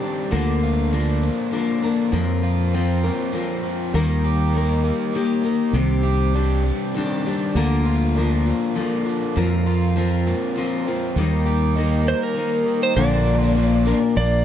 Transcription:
Already playing: D#3 G3 C4 D4 G4
0.04 D4
0.31 D2 D3 F3 A#3 D4 A#4
0.63 F4
0.92 F3 A#3 D4 A#4
1.23 A#3
1.51 D3 F3 A#3 D4 A#4
1.82 A#3 D4 A#4
2.12 F2 F3 C4 F4 A#4
2.43 F4
2.73 F3 C4 F4 A#4
3.04 A#3 C4 F4 A#4
3.32 F3 C4 F4 A#4
3.63 C4
3.94 D#2 D#3 G3 A#3 G4 A#4
4.24 G4
4.53 G3 A#3 D#4 G4
4.57 A#4
4.84 A#3
5.14 D#3 G3 A#3 G4 A#4
5.43 A#3 D#4 G4 A#4
5.73 C2 C3 D#3 G3 C4 D4 G4
6.03 G4
6.34 G3 C4 D4 G4
6.64 G3
6.94 D#3 G3 C4 D4 G4
7.26 G3 C4 D4 G4
7.55 D2 D3 F3 A#3 F4 A#4
7.85 F4
8.15 F3 A#3 D4 F4
8.19 A#4
8.45 A#3
8.75 D3 F3 A#3 F4 A#4
9.06 D4
9.36 F2 F3 C4 F4 A#4
9.66 F4
9.96 F3 C4 F4 A#4
10.27 A#3
10.56 F3 C4 F4 A#4
10.87 C4 F4 A#4
11.16 D#2 D#3 G3 A#3 D#4 A#4
11.46 G4
11.76 G3 A#3 D#4 A#4
12.05 A#3 C5
12.23 A#4
12.34 D#3 G3 A#3
12.38 D#4 A#4
12.66 D#4
12.83 C5
12.94 A#1 A#2 D3 F3 A#3 D4 F4 A#4 D5, shaker
13.27 shaker
13.39 D4 F4
13.43 A#3, shaker
13.53 A#2 D3 F3 A#3 D4 F4
13.57 A#3 D4 A#4
13.84 D3 A#3 D4 F4 A#4, shaker
13.88 F3 A#3 D4
14.00 muted overdriven electric guitar stroke
14.15 A#1 F3 A#3 D4 A#4 D5
14.32 shaker

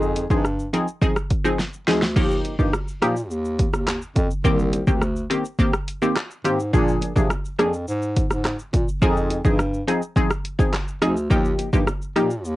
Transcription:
Already playing: F2 F3 C4 D#4 G#4
0.02 shaker
0.16 closed hi-hat, high bongo, shaker
0.30 G2 F3 C4 D#4 G#4, kick, shaker
0.45 cross-stick, shaker
0.59 shaker
0.73 F3 C4 D#4 G#4, closed hi-hat, low bongo, shaker
0.88 shaker
1.01 F3 C4 D#4 G#4, kick, shaker
1.16 cross-stick, shaker
1.30 kick, closed hi-hat, shaker
1.44 F3 C4 D#4 G#4, high bongo, shaker
1.59 snare, shaker
1.73 shaker
1.88 D2 F3 C4 D#4 G#4, snare, closed hi-hat, high bongo, low bongo, shaker
2.02 snare, shaker
2.16 D#2 F3 A#3 D#4 G4, kick, crash, shaker
2.31 shaker
2.44 closed hi-hat, high bongo, shaker
2.59 G2 F3 A#3 D#4 G4, kick, shaker
2.73 cross-stick, high bongo, shaker
2.88 shaker
3.02 A#2 F3 A#3 D#4 G4, cross-stick, closed hi-hat, low bongo, shaker
3.17 shaker
3.30 D#2, shaker
3.45 shaker
3.59 kick, closed hi-hat, shaker
3.73 D#2, cross-stick, high bongo, shaker
3.87 cross-stick, clap, high bongo, shaker
4.02 shaker
4.16 F2, kick, closed hi-hat, high bongo, low bongo, shaker
4.31 shaker
4.44 C2 D#3 A#3 C4 G4, kick, shaker
4.59 shaker
4.73 closed hi-hat, high bongo, shaker
4.87 D2 D#3 A#3 C4 G4, kick, shaker
5.02 cross-stick, high bongo, shaker
5.16 shaker
5.30 D#3 A#3 C4 G4, closed hi-hat, low bongo, shaker
5.45 shaker
5.59 D#3 A#3 C4 G4, kick, shaker
5.73 cross-stick, shaker
5.88 closed hi-hat, shaker
6.02 D#3 A#3 C4 G4, high bongo, shaker
6.16 cross-stick, clap, high bongo, shaker
6.31 shaker
6.44 G#2 D#3 A#3 C4 G4, closed hi-hat, high bongo, low bongo, shaker
6.60 shaker
6.73 A#2 F3 A#3 D4 G#4, kick, shaker
6.88 shaker
7.01 closed hi-hat, high bongo, shaker
7.16 C3 F3 A#3 D4 G#4, kick, shaker
7.30 cross-stick, high bongo, shaker
7.45 shaker
7.58 F2 F3 A#3 D4 G#4, cross-stick, closed hi-hat, low bongo, shaker
7.73 shaker
7.88 G#2, shaker
8.02 shaker
8.16 kick, closed hi-hat, shaker
8.30 G#2, cross-stick, high bongo, shaker
8.44 cross-stick, clap, high bongo, shaker
8.59 shaker
8.73 A#2, kick, closed hi-hat, high bongo, low bongo, shaker
8.88 shaker
9.01 F2 F3 C4 D#4 G#4, kick, shaker
9.16 shaker
9.30 closed hi-hat, high bongo, shaker
9.44 G2 F3 C4 D#4 G#4, kick, shaker
9.59 cross-stick, high bongo, shaker
9.74 shaker
9.87 F3 C4 D#4 G#4, closed hi-hat, low bongo, shaker
10.02 shaker
10.16 F3 C4 D#4 G#4, kick, shaker
10.30 cross-stick, shaker
10.45 closed hi-hat, shaker
10.59 F3 C4 D#4 G#4, kick, high bongo, shaker
10.73 cross-stick, clap, high bongo, shaker
10.88 shaker
11.02 D2 F3 C4 D#4 G#4, cross-stick, closed hi-hat, high bongo, low bongo, shaker
11.17 shaker
11.30 D#2 F3 A#3 D#4 G4, kick, shaker
11.45 shaker
11.59 closed hi-hat, high bongo, shaker
11.73 G2 F3 A#3 D#4 G4, kick, shaker
11.87 cross-stick, high bongo, shaker
12.02 shaker
12.16 A#2 F3 A#3 D#4 G4, cross-stick, closed hi-hat, low bongo, shaker
12.31 shaker
12.45 D#2, shaker

